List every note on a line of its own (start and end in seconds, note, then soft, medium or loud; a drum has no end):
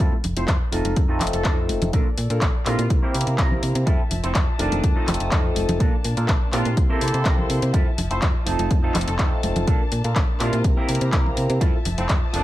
0.00 0.15 A3 medium
0.00 0.15 C4 medium
0.00 0.12 E4 loud
0.00 0.15 E4 medium
0.00 0.12 F4 loud
0.00 0.15 F4 medium
0.00 0.15 A4 medium
0.00 0.13 A4 loud
0.13 high conga medium
0.13 shaker soft
0.23 0.34 F1 medium
0.23 muted clean electric guitar stroke soft
0.23 open hi-hat loud
0.23 low conga medium
0.23 shaker loud
0.36 0.46 F1 medium
0.36 0.45 A3 medium
0.36 0.45 C4 medium
0.36 0.45 E4 medium
0.36 0.45 F4 medium
0.36 0.46 A4 loud
0.36 0.44 C5 medium
0.36 closed hi-hat medium
0.48 0.58 F2 medium
0.48 0.57 C5 medium
0.48 kick loud
0.48 clap loud
0.48 closed hi-hat medium
0.60 muted clean electric guitar stroke soft
0.71 0.83 F1 medium
0.71 1.06 A3 medium
0.71 1.06 C4 medium
0.71 1.01 D#4 medium
0.71 1.06 D#4 medium
0.71 1.02 F4 medium
0.71 1.06 F4 medium
0.71 1.06 A4 medium
0.71 1.02 A4 loud
0.71 open hi-hat medium
0.85 0.94 F1 medium
0.85 closed hi-hat medium
0.85 high conga medium
0.85 shaker soft
0.96 1.22 F2 medium
0.96 kick loud
0.96 closed hi-hat medium
1.08 1.42 A3 loud
1.08 1.42 C4 medium
1.08 1.20 D#4 loud
1.08 1.42 D#4 medium
1.08 1.21 F4 loud
1.08 1.42 F4 medium
1.08 1.42 A4 loud
1.08 1.21 A4 loud
1.20 1.31 F1 medium
1.20 clap medium
1.20 open hi-hat loud
1.20 low conga medium
1.20 shaker medium
1.27 closed hi-hat medium
1.32 1.47 F1 medium
1.32 1.41 A4 medium
1.32 muted clean electric guitar stroke soft
1.32 closed hi-hat medium
1.44 1.71 F2 medium
1.44 1.91 C4 medium
1.44 1.57 D#4 medium
1.44 1.91 D#4 medium
1.44 1.58 F4 medium
1.44 1.91 F4 medium
1.44 1.53 A4 medium
1.44 1.91 A4 medium
1.44 1.58 A4 loud
1.44 kick loud
1.44 clap loud
1.44 closed hi-hat medium
1.68 1.79 F1 medium
1.68 muted clean electric guitar stroke soft
1.68 open hi-hat medium
1.68 high conga medium
1.68 shaker medium
1.81 1.91 F1 medium
1.81 closed hi-hat medium
1.81 low conga medium
1.81 shaker soft
1.93 2.04 A#1 loud
1.93 2.06 A#3 loud
1.93 2.08 A#3 medium
1.93 2.08 D4 medium
1.93 2.06 D4 loud
1.93 2.08 F4 medium
1.93 2.89 A4 medium
1.93 2.08 A4 medium
1.93 2.07 A4 loud
1.93 2.09 A#4 medium
1.93 2.89 D5 medium
1.93 kick loud
1.93 closed hi-hat medium
1.93 shaker medium
2.17 2.28 A#2 medium
2.17 muted clean electric guitar stroke soft
2.17 open hi-hat loud
2.30 2.39 A#2 medium
2.30 2.39 A#3 medium
2.30 2.39 D4 medium
2.30 2.39 F4 medium
2.30 2.39 A4 medium
2.30 2.39 A#4 loud
2.30 closed hi-hat medium
2.41 2.52 A#1 medium
2.41 kick loud
2.41 clap loud
2.41 closed hi-hat medium
2.54 muted clean electric guitar stroke soft
2.65 2.76 A#2 medium
2.65 2.78 A#3 medium
2.65 3.00 A#3 medium
2.65 3.00 C4 medium
2.65 2.79 D4 medium
2.65 3.00 E4 medium
2.65 2.88 F4 medium
2.65 3.00 G4 medium
2.65 2.79 A4 medium
2.65 3.00 A#4 loud
2.65 clap medium
2.65 open hi-hat medium
2.79 2.88 A#2 medium
2.79 closed hi-hat medium
2.89 3.00 C2 medium
2.89 3.86 E4 medium
2.89 3.86 C5 medium
2.89 3.86 A#5 medium
2.89 muted clean electric guitar stroke soft
2.89 kick loud
2.89 closed hi-hat medium
3.02 3.36 A#3 loud
3.02 3.14 C4 loud
3.02 3.36 C4 medium
3.02 3.36 E4 medium
3.02 3.15 E4 loud
3.02 3.36 G4 medium
3.02 3.36 A#4 loud
3.02 3.15 C5 loud
3.14 3.25 C3 medium
3.14 open hi-hat loud
3.21 closed hi-hat medium
3.27 3.36 C3 medium
3.27 closed hi-hat medium
3.38 3.58 C2 medium
3.38 3.84 A#3 medium
3.38 3.51 C4 medium
3.38 3.84 C4 medium
3.38 3.51 E4 medium
3.38 3.84 G4 medium
3.38 3.52 A#4 loud
3.38 kick loud
3.38 clap loud
3.38 closed hi-hat medium
3.51 low conga medium
3.62 3.73 C3 medium
3.62 muted clean electric guitar stroke soft
3.62 open hi-hat medium
3.62 shaker medium
3.75 3.85 C3 loud
3.75 closed hi-hat medium
3.86 5.79 F3 medium
3.86 4.02 A3 medium
3.86 4.02 C4 medium
3.86 3.99 E4 loud
3.86 4.02 E4 medium
3.86 4.00 F4 loud
3.86 4.02 F4 medium
3.86 4.02 A4 medium
3.86 4.00 A4 loud
3.86 4.59 E5 medium
3.86 5.79 A5 medium
3.86 kick loud
3.86 closed hi-hat medium
4.10 4.21 F1 medium
4.10 muted clean electric guitar stroke soft
4.10 open hi-hat loud
4.10 low conga medium
4.10 shaker medium
4.23 4.33 F1 medium
4.23 4.32 A3 medium
4.23 4.32 C4 medium
4.23 4.31 C4 medium
4.23 4.32 E4 medium
4.23 4.33 F4 medium
4.23 4.33 A4 loud
4.23 closed hi-hat medium
4.35 4.45 F2 medium
4.35 4.44 C4 medium
4.35 kick loud
4.35 clap loud
4.35 closed hi-hat medium
4.47 muted clean electric guitar stroke soft
4.59 4.70 F1 medium
4.59 4.93 D#3 medium
4.59 4.93 A3 medium
4.59 4.93 C4 medium
4.59 4.97 D4 medium
4.59 4.88 D#4 medium
4.59 4.89 F4 medium
4.59 4.93 F4 medium
4.59 4.93 A4 loud
4.59 4.89 A4 loud
4.59 5.79 D#6 medium
4.59 open hi-hat medium
4.72 4.81 F1 medium
4.72 closed hi-hat medium
4.72 high conga medium
4.72 shaker soft
4.84 4.94 F2 medium
4.84 kick loud
4.84 closed hi-hat medium
4.95 5.29 A3 loud
4.95 5.29 C4 medium
4.95 5.07 D#4 loud
4.95 5.29 D#4 medium
4.95 5.08 F4 loud
4.95 5.29 F4 medium
4.95 5.29 A4 loud
4.95 5.08 A4 loud
5.07 5.18 F1 medium
5.07 clap medium
5.07 open hi-hat loud
5.07 low conga loud
5.07 shaker medium
5.14 closed hi-hat medium
5.19 5.30 F1 medium
5.19 muted clean electric guitar stroke soft
5.19 closed hi-hat medium
5.31 5.52 F2 medium
5.31 5.78 A3 medium
5.31 5.78 C4 medium
5.31 5.44 D#4 medium
5.31 5.78 D#4 medium
5.31 5.45 F4 medium
5.31 5.78 F4 medium
5.31 5.78 A4 medium
5.31 5.45 A4 medium
5.31 kick loud
5.31 clap loud
5.31 closed hi-hat medium
5.55 5.66 F1 medium
5.55 muted clean electric guitar stroke soft
5.55 open hi-hat medium
5.55 high conga medium
5.55 shaker medium
5.69 5.78 F1 medium
5.69 closed hi-hat medium
5.69 low conga loud
5.69 shaker soft
5.79 5.91 A#1 loud
5.79 5.93 A#3 loud
5.79 5.95 A#3 medium
5.79 6.76 A#3 medium
5.79 5.93 D4 loud
5.79 6.76 D4 medium
5.79 5.93 A4 loud
5.79 5.96 A#4 medium
5.79 6.76 A5 medium
5.79 kick loud
5.79 closed hi-hat medium
6.04 6.15 A#2 medium
6.04 muted clean electric guitar stroke soft
6.04 open hi-hat loud
6.17 6.27 A#2 medium
6.17 6.26 A#3 medium
6.17 6.26 D4 medium
6.17 6.26 F4 medium
6.17 6.26 A4 medium
6.17 6.26 A#4 loud
6.17 closed hi-hat medium
6.28 6.39 A#1 medium
6.28 kick loud
6.28 clap loud
6.28 closed hi-hat medium
6.40 muted clean electric guitar stroke soft
6.52 6.63 A#2 medium
6.52 6.65 A#3 medium
6.52 6.87 A#3 medium
6.52 6.87 C4 medium
6.52 6.66 D4 medium
6.52 6.87 E4 medium
6.52 6.75 F4 medium
6.52 6.87 G4 medium
6.52 6.66 A4 loud
6.52 6.87 A#4 loud
6.52 clap medium
6.52 open hi-hat loud
6.65 6.75 A#2 medium
6.65 closed hi-hat soft
6.76 6.87 C2 medium
6.76 7.73 E4 medium
6.76 7.73 C5 medium
6.76 7.73 C6 medium
6.76 muted clean electric guitar stroke soft
6.76 kick loud
6.76 closed hi-hat medium
6.89 7.23 A#3 loud
6.89 7.01 C4 loud
6.89 7.23 C4 medium
6.89 7.01 E4 loud
6.89 7.23 E4 medium
6.89 7.23 G4 medium
6.89 7.58 A4 medium
6.89 7.02 A#4 loud
6.89 7.23 C5 loud
7.01 7.12 C3 medium
7.01 open hi-hat loud
7.08 closed hi-hat medium
7.14 7.23 C3 medium
7.14 closed hi-hat medium
7.25 7.45 C2 medium
7.25 7.38 C4 medium
7.25 7.38 E4 medium
7.25 7.71 G4 medium
7.25 7.39 A#4 loud
7.25 7.71 C5 medium
7.25 kick loud
7.25 clap loud
7.25 closed hi-hat medium
7.38 low conga medium
7.49 7.60 C3 medium
7.49 muted clean electric guitar stroke soft
7.49 open hi-hat loud
7.62 7.72 C3 medium
7.62 closed hi-hat medium
7.73 7.84 F2 loud
7.73 8.46 F3 medium
7.73 7.89 A3 medium
7.73 7.89 C4 medium
7.73 7.86 E4 loud
7.73 7.89 E4 medium
7.73 7.87 F4 loud
7.73 7.89 F4 medium
7.73 7.89 A4 medium
7.73 7.87 A4 loud
7.73 8.46 E5 medium
7.73 8.46 A5 medium
7.73 kick loud
7.73 closed hi-hat medium
7.87 shaker soft
7.97 8.08 F1 medium
7.97 muted clean electric guitar stroke soft
7.97 open hi-hat loud
7.97 low conga medium
7.97 shaker medium
8.10 8.20 F1 medium
8.10 8.19 A3 medium
8.10 8.19 C4 medium
8.10 8.20 E4 medium
8.10 8.20 F4 medium
8.10 8.20 A4 loud
8.10 8.18 C5 medium
8.10 closed hi-hat soft
8.22 8.32 F2 medium
8.22 8.30 C5 medium
8.22 kick loud
8.22 clap loud
8.22 closed hi-hat medium
8.34 muted clean electric guitar stroke soft
8.45 8.57 F1 medium
8.45 8.80 A3 medium
8.45 8.80 C4 medium
8.45 8.75 D#4 medium
8.45 8.80 D#4 medium
8.45 8.76 F4 medium
8.45 8.81 F4 medium
8.45 9.66 F4 medium
8.45 8.81 A4 loud
8.45 8.76 A4 loud
8.45 9.66 D#5 medium
8.45 10.62 A5 medium
8.45 open hi-hat loud
8.59 8.69 F1 medium
8.59 closed hi-hat soft
8.59 high conga medium
8.59 shaker soft
8.71 8.90 F2 medium
8.71 kick loud
8.71 closed hi-hat medium
8.82 9.16 A3 medium
8.82 9.16 C4 medium
8.82 8.95 D#4 loud
8.82 9.17 D#4 medium
8.82 8.95 F4 loud
8.82 9.17 F4 medium
8.82 9.17 A4 loud
8.82 8.95 A4 loud
8.82 shaker soft
8.94 9.05 F1 medium
8.94 clap medium
8.94 open hi-hat loud
8.94 low conga loud
8.94 shaker medium
9.01 closed hi-hat medium
9.07 9.21 F1 loud
9.07 9.15 A4 medium
9.07 muted clean electric guitar stroke soft
9.07 closed hi-hat soft
9.18 9.29 F2 medium
9.18 9.40 A3 medium
9.18 9.41 C4 medium
9.18 9.31 D#4 medium
9.18 9.41 D#4 medium
9.18 9.32 F4 medium
9.18 9.41 F4 medium
9.18 9.27 A4 medium
9.18 9.41 A4 loud
9.18 9.32 A4 loud
9.18 kick loud
9.18 clap loud
9.18 closed hi-hat medium
9.43 9.54 F1 medium
9.43 9.65 A3 medium
9.43 9.65 C4 medium
9.43 9.65 D#4 medium
9.43 9.65 F4 medium
9.43 9.65 A4 medium
9.43 open hi-hat medium
9.43 high conga medium
9.43 shaker medium
9.55 9.65 F1 medium
9.55 closed hi-hat medium
9.55 low conga medium
9.55 shaker soft
9.67 9.78 A#1 loud
9.67 9.80 A#3 loud
9.67 9.82 A#3 medium
9.67 10.64 A#3 medium
9.67 9.82 D4 medium
9.67 9.80 D4 loud
9.67 10.64 D4 medium
9.67 9.83 F4 medium
9.67 9.83 A4 medium
9.67 9.81 A4 loud
9.67 9.83 A#4 medium
9.67 kick loud
9.67 closed hi-hat medium
9.91 10.02 A#2 medium
9.91 muted clean electric guitar stroke soft
9.91 open hi-hat loud
10.04 10.14 A#2 medium
10.04 10.13 A#3 medium
10.04 10.13 D4 medium
10.04 10.13 F4 medium
10.04 10.13 A4 medium
10.04 10.13 A#4 loud
10.04 closed hi-hat soft
10.16 10.26 A#1 medium
10.16 kick loud
10.16 clap loud
10.16 closed hi-hat medium
10.28 muted clean electric guitar stroke soft
10.39 10.50 A#2 medium
10.39 10.52 A#3 medium
10.39 10.74 A#3 medium
10.39 10.74 C4 medium
10.39 10.53 D4 medium
10.39 10.74 E4 medium
10.39 10.53 E4 medium
10.39 10.62 F4 medium
10.39 10.74 G4 medium
10.39 10.74 A#4 loud
10.39 clap medium
10.39 open hi-hat medium
10.53 10.62 A#2 medium
10.53 closed hi-hat soft
10.64 10.75 C2 medium
10.64 11.60 E4 medium
10.64 11.60 C5 medium
10.64 11.60 A#5 medium
10.64 muted clean electric guitar stroke soft
10.64 kick loud
10.64 closed hi-hat medium
10.76 11.10 A#3 loud
10.76 10.88 C4 loud
10.76 11.10 C4 medium
10.76 11.10 E4 medium
10.76 10.89 E4 loud
10.76 11.10 G4 medium
10.76 11.10 A#4 loud
10.76 10.89 A#4 loud
10.89 10.99 C3 medium
10.89 open hi-hat loud
10.95 closed hi-hat medium
11.01 11.11 C3 medium
11.01 muted clean electric guitar stroke soft
11.01 closed hi-hat medium
11.12 11.32 C2 medium
11.12 11.58 A#3 medium
11.12 11.25 C4 medium
11.12 11.58 C4 medium
11.12 11.58 E4 medium
11.12 11.26 E4 medium
11.12 11.58 G4 medium
11.12 11.59 A#4 medium
11.12 11.26 A#4 loud
11.12 kick loud
11.12 clap loud
11.12 closed hi-hat medium
11.26 low conga medium
11.36 11.47 C3 medium
11.36 muted clean electric guitar stroke soft
11.36 open hi-hat medium
11.36 shaker medium
11.50 11.59 C3 medium
11.50 closed hi-hat medium
11.60 11.71 F2 loud
11.60 12.44 F3 medium
11.60 11.76 A3 medium
11.60 11.76 C4 medium
11.60 11.73 E4 loud
11.60 11.76 E4 medium
11.60 11.74 F4 loud
11.60 11.76 F4 medium
11.60 11.76 A4 medium
11.60 11.74 A4 loud
11.60 12.33 E5 medium
11.60 12.44 A5 medium
11.60 kick loud
11.60 closed hi-hat medium
11.85 11.96 F1 medium
11.85 muted clean electric guitar stroke soft
11.85 open hi-hat loud
11.85 low conga medium
11.85 shaker medium
11.97 12.07 F1 medium
11.97 12.06 A3 medium
11.97 12.07 C4 medium
11.97 12.06 C4 medium
11.97 12.07 E4 medium
11.97 12.07 F4 medium
11.97 12.07 A4 loud
11.97 closed hi-hat medium
12.09 12.20 F2 medium
12.09 12.18 C4 medium
12.09 kick loud
12.09 clap loud
12.09 closed hi-hat medium
12.22 muted clean electric guitar stroke soft
12.33 12.44 F1 medium
12.33 12.44 D#3 medium
12.33 12.44 A3 medium
12.33 12.44 C4 medium
12.33 12.44 D4 medium
12.33 12.44 D#4 medium
12.33 12.44 F4 medium
12.33 12.44 A4 loud
12.33 12.44 D#6 medium
12.33 open hi-hat medium
12.33 shaker medium